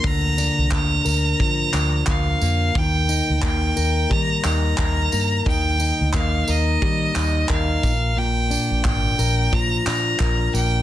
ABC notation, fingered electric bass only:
X:1
M:4/4
L:1/16
Q:"Swing 16ths" 1/4=89
K:Eb
V:1 name="Fingered electric bass" clef=bass
D,,3 C,, D,,2 D,,2 D,2 D,,2 D,,2 F,,2 | E,,3 D,, z2 E,,2 E,2 E,,2 E,,2 G,,2 | E,,3 D,, E,,2 E,,2 E,2 E,,2 E,,2 B,,,2- | B,,,3 B,,, A,,,2 B,,,2 B,,2 B,,2 B,,,2 B,,,2 |]